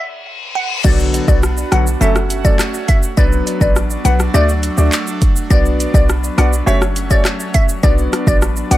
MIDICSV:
0, 0, Header, 1, 7, 480
1, 0, Start_track
1, 0, Key_signature, 2, "minor"
1, 0, Tempo, 582524
1, 698, Time_signature, 4, 2, 24, 8
1, 7231, End_track
2, 0, Start_track
2, 0, Title_t, "Synth pluck"
2, 0, Program_c, 0, 84
2, 456, Note_on_c, 0, 78, 82
2, 536, Note_off_c, 0, 78, 0
2, 695, Note_on_c, 0, 74, 97
2, 775, Note_off_c, 0, 74, 0
2, 1056, Note_on_c, 0, 74, 76
2, 1136, Note_off_c, 0, 74, 0
2, 1417, Note_on_c, 0, 78, 80
2, 1497, Note_off_c, 0, 78, 0
2, 1655, Note_on_c, 0, 76, 89
2, 1736, Note_off_c, 0, 76, 0
2, 2016, Note_on_c, 0, 74, 81
2, 2096, Note_off_c, 0, 74, 0
2, 2375, Note_on_c, 0, 76, 87
2, 2455, Note_off_c, 0, 76, 0
2, 2614, Note_on_c, 0, 74, 96
2, 2695, Note_off_c, 0, 74, 0
2, 2976, Note_on_c, 0, 74, 77
2, 3056, Note_off_c, 0, 74, 0
2, 3336, Note_on_c, 0, 78, 83
2, 3416, Note_off_c, 0, 78, 0
2, 3578, Note_on_c, 0, 74, 104
2, 3916, Note_off_c, 0, 74, 0
2, 4536, Note_on_c, 0, 74, 98
2, 4616, Note_off_c, 0, 74, 0
2, 4899, Note_on_c, 0, 74, 77
2, 4978, Note_off_c, 0, 74, 0
2, 5257, Note_on_c, 0, 78, 79
2, 5337, Note_off_c, 0, 78, 0
2, 5498, Note_on_c, 0, 76, 91
2, 5578, Note_off_c, 0, 76, 0
2, 5855, Note_on_c, 0, 74, 81
2, 5936, Note_off_c, 0, 74, 0
2, 6216, Note_on_c, 0, 76, 89
2, 6296, Note_off_c, 0, 76, 0
2, 6454, Note_on_c, 0, 74, 95
2, 6535, Note_off_c, 0, 74, 0
2, 6818, Note_on_c, 0, 74, 76
2, 6898, Note_off_c, 0, 74, 0
2, 7178, Note_on_c, 0, 78, 82
2, 7231, Note_off_c, 0, 78, 0
2, 7231, End_track
3, 0, Start_track
3, 0, Title_t, "Grand piano"
3, 0, Program_c, 1, 0
3, 694, Note_on_c, 1, 50, 93
3, 696, Note_on_c, 1, 54, 89
3, 698, Note_on_c, 1, 59, 84
3, 700, Note_on_c, 1, 66, 106
3, 1027, Note_off_c, 1, 50, 0
3, 1028, Note_off_c, 1, 54, 0
3, 1029, Note_off_c, 1, 59, 0
3, 1030, Note_off_c, 1, 66, 0
3, 1053, Note_on_c, 1, 50, 78
3, 1054, Note_on_c, 1, 54, 75
3, 1056, Note_on_c, 1, 59, 75
3, 1058, Note_on_c, 1, 66, 90
3, 1158, Note_off_c, 1, 50, 0
3, 1159, Note_off_c, 1, 54, 0
3, 1159, Note_off_c, 1, 59, 0
3, 1161, Note_off_c, 1, 66, 0
3, 1414, Note_on_c, 1, 50, 78
3, 1416, Note_on_c, 1, 54, 76
3, 1417, Note_on_c, 1, 59, 73
3, 1418, Note_on_c, 1, 66, 86
3, 1518, Note_off_c, 1, 50, 0
3, 1519, Note_off_c, 1, 54, 0
3, 1520, Note_off_c, 1, 59, 0
3, 1521, Note_off_c, 1, 66, 0
3, 1652, Note_on_c, 1, 54, 96
3, 1654, Note_on_c, 1, 57, 86
3, 1655, Note_on_c, 1, 61, 85
3, 1657, Note_on_c, 1, 69, 104
3, 1758, Note_off_c, 1, 54, 0
3, 1758, Note_off_c, 1, 57, 0
3, 1759, Note_off_c, 1, 61, 0
3, 1760, Note_off_c, 1, 69, 0
3, 2013, Note_on_c, 1, 54, 77
3, 2014, Note_on_c, 1, 57, 70
3, 2016, Note_on_c, 1, 61, 71
3, 2018, Note_on_c, 1, 69, 83
3, 2118, Note_off_c, 1, 54, 0
3, 2118, Note_off_c, 1, 57, 0
3, 2120, Note_off_c, 1, 61, 0
3, 2120, Note_off_c, 1, 69, 0
3, 2614, Note_on_c, 1, 54, 99
3, 2615, Note_on_c, 1, 59, 87
3, 2618, Note_on_c, 1, 62, 91
3, 2619, Note_on_c, 1, 71, 108
3, 2947, Note_off_c, 1, 54, 0
3, 2947, Note_off_c, 1, 59, 0
3, 2949, Note_off_c, 1, 62, 0
3, 2950, Note_off_c, 1, 71, 0
3, 2975, Note_on_c, 1, 54, 82
3, 2978, Note_on_c, 1, 59, 73
3, 2979, Note_on_c, 1, 62, 73
3, 2981, Note_on_c, 1, 71, 89
3, 3079, Note_off_c, 1, 54, 0
3, 3080, Note_off_c, 1, 59, 0
3, 3081, Note_off_c, 1, 62, 0
3, 3082, Note_off_c, 1, 71, 0
3, 3336, Note_on_c, 1, 54, 79
3, 3338, Note_on_c, 1, 59, 74
3, 3340, Note_on_c, 1, 62, 73
3, 3342, Note_on_c, 1, 71, 86
3, 3440, Note_off_c, 1, 54, 0
3, 3440, Note_off_c, 1, 59, 0
3, 3441, Note_off_c, 1, 62, 0
3, 3443, Note_off_c, 1, 71, 0
3, 3576, Note_on_c, 1, 57, 101
3, 3578, Note_on_c, 1, 62, 87
3, 3578, Note_on_c, 1, 66, 87
3, 3580, Note_on_c, 1, 74, 109
3, 3679, Note_off_c, 1, 57, 0
3, 3680, Note_off_c, 1, 62, 0
3, 3681, Note_off_c, 1, 66, 0
3, 3681, Note_off_c, 1, 74, 0
3, 3934, Note_on_c, 1, 57, 78
3, 3937, Note_on_c, 1, 62, 70
3, 3937, Note_on_c, 1, 66, 75
3, 3940, Note_on_c, 1, 74, 88
3, 4039, Note_off_c, 1, 57, 0
3, 4040, Note_off_c, 1, 62, 0
3, 4040, Note_off_c, 1, 66, 0
3, 4041, Note_off_c, 1, 74, 0
3, 4534, Note_on_c, 1, 59, 92
3, 4535, Note_on_c, 1, 62, 86
3, 4537, Note_on_c, 1, 66, 87
3, 4539, Note_on_c, 1, 74, 101
3, 4867, Note_off_c, 1, 59, 0
3, 4867, Note_off_c, 1, 62, 0
3, 4869, Note_off_c, 1, 66, 0
3, 4870, Note_off_c, 1, 74, 0
3, 4893, Note_on_c, 1, 59, 81
3, 4895, Note_on_c, 1, 62, 77
3, 4898, Note_on_c, 1, 66, 72
3, 4899, Note_on_c, 1, 74, 92
3, 4998, Note_off_c, 1, 59, 0
3, 4999, Note_off_c, 1, 62, 0
3, 5000, Note_off_c, 1, 66, 0
3, 5001, Note_off_c, 1, 74, 0
3, 5251, Note_on_c, 1, 59, 81
3, 5253, Note_on_c, 1, 62, 73
3, 5254, Note_on_c, 1, 66, 75
3, 5256, Note_on_c, 1, 74, 91
3, 5357, Note_off_c, 1, 59, 0
3, 5358, Note_off_c, 1, 62, 0
3, 5359, Note_off_c, 1, 66, 0
3, 5359, Note_off_c, 1, 74, 0
3, 5490, Note_on_c, 1, 57, 97
3, 5492, Note_on_c, 1, 61, 88
3, 5494, Note_on_c, 1, 66, 90
3, 5495, Note_on_c, 1, 73, 106
3, 5597, Note_off_c, 1, 57, 0
3, 5598, Note_off_c, 1, 61, 0
3, 5598, Note_off_c, 1, 66, 0
3, 5599, Note_off_c, 1, 73, 0
3, 5853, Note_on_c, 1, 57, 83
3, 5856, Note_on_c, 1, 61, 73
3, 5856, Note_on_c, 1, 66, 73
3, 5858, Note_on_c, 1, 73, 86
3, 5958, Note_off_c, 1, 57, 0
3, 5959, Note_off_c, 1, 61, 0
3, 5960, Note_off_c, 1, 66, 0
3, 5960, Note_off_c, 1, 73, 0
3, 6452, Note_on_c, 1, 59, 95
3, 6454, Note_on_c, 1, 62, 90
3, 6456, Note_on_c, 1, 66, 88
3, 6457, Note_on_c, 1, 74, 105
3, 6786, Note_off_c, 1, 59, 0
3, 6787, Note_off_c, 1, 62, 0
3, 6788, Note_off_c, 1, 66, 0
3, 6789, Note_off_c, 1, 74, 0
3, 6814, Note_on_c, 1, 59, 82
3, 6816, Note_on_c, 1, 62, 73
3, 6818, Note_on_c, 1, 66, 76
3, 6820, Note_on_c, 1, 74, 91
3, 6919, Note_off_c, 1, 59, 0
3, 6920, Note_off_c, 1, 62, 0
3, 6920, Note_off_c, 1, 66, 0
3, 6921, Note_off_c, 1, 74, 0
3, 7176, Note_on_c, 1, 59, 77
3, 7177, Note_on_c, 1, 62, 72
3, 7179, Note_on_c, 1, 66, 72
3, 7181, Note_on_c, 1, 74, 88
3, 7231, Note_off_c, 1, 59, 0
3, 7231, Note_off_c, 1, 62, 0
3, 7231, Note_off_c, 1, 66, 0
3, 7231, Note_off_c, 1, 74, 0
3, 7231, End_track
4, 0, Start_track
4, 0, Title_t, "Analog synth pad"
4, 0, Program_c, 2, 89
4, 697, Note_on_c, 2, 59, 80
4, 698, Note_on_c, 2, 62, 69
4, 699, Note_on_c, 2, 66, 82
4, 1647, Note_off_c, 2, 66, 0
4, 1648, Note_off_c, 2, 59, 0
4, 1648, Note_off_c, 2, 62, 0
4, 1656, Note_on_c, 2, 57, 81
4, 1657, Note_on_c, 2, 61, 73
4, 1657, Note_on_c, 2, 66, 90
4, 2607, Note_off_c, 2, 57, 0
4, 2607, Note_off_c, 2, 66, 0
4, 2608, Note_off_c, 2, 61, 0
4, 2615, Note_on_c, 2, 59, 67
4, 2615, Note_on_c, 2, 62, 86
4, 2617, Note_on_c, 2, 54, 81
4, 3567, Note_off_c, 2, 59, 0
4, 3576, Note_on_c, 2, 57, 75
4, 4527, Note_off_c, 2, 57, 0
4, 4536, Note_on_c, 2, 59, 70
4, 5468, Note_off_c, 2, 54, 0
4, 5468, Note_off_c, 2, 62, 0
4, 5487, Note_off_c, 2, 59, 0
4, 5499, Note_on_c, 2, 57, 71
4, 5499, Note_on_c, 2, 61, 87
4, 5500, Note_on_c, 2, 54, 81
4, 6449, Note_off_c, 2, 57, 0
4, 6449, Note_off_c, 2, 61, 0
4, 6460, Note_on_c, 2, 62, 89
4, 6461, Note_on_c, 2, 59, 73
4, 7231, Note_off_c, 2, 54, 0
4, 7231, Note_off_c, 2, 59, 0
4, 7231, Note_off_c, 2, 62, 0
4, 7231, End_track
5, 0, Start_track
5, 0, Title_t, "808-style bass"
5, 0, Program_c, 3, 38
5, 698, Note_on_c, 3, 35, 113
5, 995, Note_off_c, 3, 35, 0
5, 1055, Note_on_c, 3, 35, 104
5, 1353, Note_off_c, 3, 35, 0
5, 1418, Note_on_c, 3, 35, 92
5, 1616, Note_off_c, 3, 35, 0
5, 1657, Note_on_c, 3, 30, 107
5, 2054, Note_off_c, 3, 30, 0
5, 2618, Note_on_c, 3, 35, 108
5, 2816, Note_off_c, 3, 35, 0
5, 2975, Note_on_c, 3, 33, 94
5, 3274, Note_off_c, 3, 33, 0
5, 3337, Note_on_c, 3, 35, 97
5, 3536, Note_off_c, 3, 35, 0
5, 3577, Note_on_c, 3, 38, 109
5, 3875, Note_off_c, 3, 38, 0
5, 3937, Note_on_c, 3, 38, 94
5, 4036, Note_off_c, 3, 38, 0
5, 4538, Note_on_c, 3, 35, 115
5, 4835, Note_off_c, 3, 35, 0
5, 4896, Note_on_c, 3, 35, 107
5, 5194, Note_off_c, 3, 35, 0
5, 5257, Note_on_c, 3, 35, 93
5, 5456, Note_off_c, 3, 35, 0
5, 5498, Note_on_c, 3, 30, 111
5, 5894, Note_off_c, 3, 30, 0
5, 6457, Note_on_c, 3, 35, 108
5, 6655, Note_off_c, 3, 35, 0
5, 6815, Note_on_c, 3, 33, 95
5, 7114, Note_off_c, 3, 33, 0
5, 7179, Note_on_c, 3, 35, 100
5, 7231, Note_off_c, 3, 35, 0
5, 7231, End_track
6, 0, Start_track
6, 0, Title_t, "Reverse cymbal"
6, 0, Program_c, 4, 119
6, 0, Note_on_c, 4, 60, 83
6, 697, Note_off_c, 4, 60, 0
6, 7231, End_track
7, 0, Start_track
7, 0, Title_t, "Drums"
7, 697, Note_on_c, 9, 36, 105
7, 697, Note_on_c, 9, 49, 102
7, 697, Note_on_c, 9, 82, 83
7, 779, Note_off_c, 9, 49, 0
7, 779, Note_off_c, 9, 82, 0
7, 780, Note_off_c, 9, 36, 0
7, 819, Note_on_c, 9, 82, 44
7, 902, Note_off_c, 9, 82, 0
7, 940, Note_on_c, 9, 42, 71
7, 940, Note_on_c, 9, 82, 50
7, 1023, Note_off_c, 9, 42, 0
7, 1023, Note_off_c, 9, 82, 0
7, 1055, Note_on_c, 9, 36, 100
7, 1059, Note_on_c, 9, 82, 78
7, 1138, Note_off_c, 9, 36, 0
7, 1141, Note_off_c, 9, 82, 0
7, 1178, Note_on_c, 9, 82, 70
7, 1181, Note_on_c, 9, 37, 96
7, 1261, Note_off_c, 9, 82, 0
7, 1263, Note_off_c, 9, 37, 0
7, 1298, Note_on_c, 9, 82, 62
7, 1380, Note_off_c, 9, 82, 0
7, 1416, Note_on_c, 9, 37, 103
7, 1418, Note_on_c, 9, 42, 73
7, 1418, Note_on_c, 9, 82, 53
7, 1499, Note_off_c, 9, 37, 0
7, 1500, Note_off_c, 9, 42, 0
7, 1500, Note_off_c, 9, 82, 0
7, 1540, Note_on_c, 9, 82, 73
7, 1622, Note_off_c, 9, 82, 0
7, 1660, Note_on_c, 9, 82, 74
7, 1743, Note_off_c, 9, 82, 0
7, 1778, Note_on_c, 9, 37, 103
7, 1778, Note_on_c, 9, 82, 48
7, 1860, Note_off_c, 9, 37, 0
7, 1861, Note_off_c, 9, 82, 0
7, 1898, Note_on_c, 9, 42, 76
7, 1898, Note_on_c, 9, 82, 55
7, 1980, Note_off_c, 9, 42, 0
7, 1980, Note_off_c, 9, 82, 0
7, 2018, Note_on_c, 9, 36, 96
7, 2018, Note_on_c, 9, 82, 69
7, 2100, Note_off_c, 9, 36, 0
7, 2100, Note_off_c, 9, 82, 0
7, 2137, Note_on_c, 9, 37, 102
7, 2137, Note_on_c, 9, 39, 99
7, 2138, Note_on_c, 9, 82, 91
7, 2219, Note_off_c, 9, 37, 0
7, 2219, Note_off_c, 9, 39, 0
7, 2220, Note_off_c, 9, 82, 0
7, 2259, Note_on_c, 9, 82, 56
7, 2342, Note_off_c, 9, 82, 0
7, 2377, Note_on_c, 9, 42, 69
7, 2377, Note_on_c, 9, 82, 47
7, 2380, Note_on_c, 9, 36, 105
7, 2459, Note_off_c, 9, 42, 0
7, 2459, Note_off_c, 9, 82, 0
7, 2462, Note_off_c, 9, 36, 0
7, 2496, Note_on_c, 9, 82, 86
7, 2578, Note_off_c, 9, 82, 0
7, 2617, Note_on_c, 9, 82, 80
7, 2618, Note_on_c, 9, 36, 113
7, 2700, Note_off_c, 9, 36, 0
7, 2700, Note_off_c, 9, 82, 0
7, 2739, Note_on_c, 9, 82, 46
7, 2821, Note_off_c, 9, 82, 0
7, 2860, Note_on_c, 9, 42, 69
7, 2860, Note_on_c, 9, 82, 49
7, 2942, Note_off_c, 9, 42, 0
7, 2942, Note_off_c, 9, 82, 0
7, 2975, Note_on_c, 9, 36, 99
7, 2978, Note_on_c, 9, 82, 75
7, 3058, Note_off_c, 9, 36, 0
7, 3060, Note_off_c, 9, 82, 0
7, 3099, Note_on_c, 9, 82, 70
7, 3101, Note_on_c, 9, 37, 91
7, 3181, Note_off_c, 9, 82, 0
7, 3183, Note_off_c, 9, 37, 0
7, 3217, Note_on_c, 9, 82, 61
7, 3299, Note_off_c, 9, 82, 0
7, 3338, Note_on_c, 9, 42, 75
7, 3338, Note_on_c, 9, 82, 53
7, 3421, Note_off_c, 9, 42, 0
7, 3421, Note_off_c, 9, 82, 0
7, 3459, Note_on_c, 9, 82, 75
7, 3460, Note_on_c, 9, 37, 89
7, 3541, Note_off_c, 9, 82, 0
7, 3542, Note_off_c, 9, 37, 0
7, 3581, Note_on_c, 9, 82, 77
7, 3663, Note_off_c, 9, 82, 0
7, 3699, Note_on_c, 9, 82, 50
7, 3781, Note_off_c, 9, 82, 0
7, 3816, Note_on_c, 9, 42, 74
7, 3816, Note_on_c, 9, 82, 53
7, 3898, Note_off_c, 9, 42, 0
7, 3898, Note_off_c, 9, 82, 0
7, 3936, Note_on_c, 9, 82, 70
7, 4018, Note_off_c, 9, 82, 0
7, 4057, Note_on_c, 9, 39, 100
7, 4058, Note_on_c, 9, 82, 92
7, 4139, Note_off_c, 9, 39, 0
7, 4140, Note_off_c, 9, 82, 0
7, 4179, Note_on_c, 9, 82, 57
7, 4262, Note_off_c, 9, 82, 0
7, 4298, Note_on_c, 9, 42, 67
7, 4298, Note_on_c, 9, 82, 49
7, 4300, Note_on_c, 9, 36, 103
7, 4381, Note_off_c, 9, 42, 0
7, 4381, Note_off_c, 9, 82, 0
7, 4382, Note_off_c, 9, 36, 0
7, 4417, Note_on_c, 9, 82, 83
7, 4500, Note_off_c, 9, 82, 0
7, 4538, Note_on_c, 9, 36, 108
7, 4539, Note_on_c, 9, 82, 83
7, 4620, Note_off_c, 9, 36, 0
7, 4621, Note_off_c, 9, 82, 0
7, 4660, Note_on_c, 9, 82, 45
7, 4742, Note_off_c, 9, 82, 0
7, 4781, Note_on_c, 9, 42, 66
7, 4781, Note_on_c, 9, 82, 49
7, 4863, Note_off_c, 9, 42, 0
7, 4863, Note_off_c, 9, 82, 0
7, 4896, Note_on_c, 9, 36, 98
7, 4900, Note_on_c, 9, 82, 75
7, 4978, Note_off_c, 9, 36, 0
7, 4983, Note_off_c, 9, 82, 0
7, 5020, Note_on_c, 9, 82, 68
7, 5023, Note_on_c, 9, 37, 95
7, 5103, Note_off_c, 9, 82, 0
7, 5105, Note_off_c, 9, 37, 0
7, 5139, Note_on_c, 9, 82, 59
7, 5222, Note_off_c, 9, 82, 0
7, 5259, Note_on_c, 9, 37, 99
7, 5260, Note_on_c, 9, 42, 72
7, 5260, Note_on_c, 9, 82, 52
7, 5341, Note_off_c, 9, 37, 0
7, 5343, Note_off_c, 9, 42, 0
7, 5343, Note_off_c, 9, 82, 0
7, 5381, Note_on_c, 9, 82, 76
7, 5463, Note_off_c, 9, 82, 0
7, 5500, Note_on_c, 9, 82, 74
7, 5583, Note_off_c, 9, 82, 0
7, 5618, Note_on_c, 9, 37, 101
7, 5619, Note_on_c, 9, 82, 51
7, 5700, Note_off_c, 9, 37, 0
7, 5701, Note_off_c, 9, 82, 0
7, 5736, Note_on_c, 9, 42, 74
7, 5736, Note_on_c, 9, 82, 54
7, 5818, Note_off_c, 9, 42, 0
7, 5818, Note_off_c, 9, 82, 0
7, 5854, Note_on_c, 9, 82, 69
7, 5856, Note_on_c, 9, 36, 91
7, 5937, Note_off_c, 9, 82, 0
7, 5939, Note_off_c, 9, 36, 0
7, 5974, Note_on_c, 9, 37, 102
7, 5974, Note_on_c, 9, 39, 100
7, 5975, Note_on_c, 9, 82, 86
7, 6056, Note_off_c, 9, 37, 0
7, 6056, Note_off_c, 9, 39, 0
7, 6057, Note_off_c, 9, 82, 0
7, 6096, Note_on_c, 9, 82, 57
7, 6179, Note_off_c, 9, 82, 0
7, 6215, Note_on_c, 9, 42, 65
7, 6215, Note_on_c, 9, 82, 46
7, 6219, Note_on_c, 9, 36, 98
7, 6298, Note_off_c, 9, 42, 0
7, 6298, Note_off_c, 9, 82, 0
7, 6301, Note_off_c, 9, 36, 0
7, 6335, Note_on_c, 9, 82, 80
7, 6417, Note_off_c, 9, 82, 0
7, 6455, Note_on_c, 9, 82, 79
7, 6457, Note_on_c, 9, 36, 105
7, 6538, Note_off_c, 9, 82, 0
7, 6539, Note_off_c, 9, 36, 0
7, 6578, Note_on_c, 9, 82, 46
7, 6660, Note_off_c, 9, 82, 0
7, 6699, Note_on_c, 9, 37, 105
7, 6699, Note_on_c, 9, 42, 68
7, 6699, Note_on_c, 9, 82, 51
7, 6782, Note_off_c, 9, 37, 0
7, 6782, Note_off_c, 9, 42, 0
7, 6782, Note_off_c, 9, 82, 0
7, 6815, Note_on_c, 9, 36, 98
7, 6818, Note_on_c, 9, 82, 77
7, 6898, Note_off_c, 9, 36, 0
7, 6901, Note_off_c, 9, 82, 0
7, 6938, Note_on_c, 9, 82, 69
7, 6940, Note_on_c, 9, 37, 97
7, 7020, Note_off_c, 9, 82, 0
7, 7023, Note_off_c, 9, 37, 0
7, 7057, Note_on_c, 9, 82, 58
7, 7140, Note_off_c, 9, 82, 0
7, 7180, Note_on_c, 9, 42, 74
7, 7180, Note_on_c, 9, 82, 54
7, 7231, Note_off_c, 9, 42, 0
7, 7231, Note_off_c, 9, 82, 0
7, 7231, End_track
0, 0, End_of_file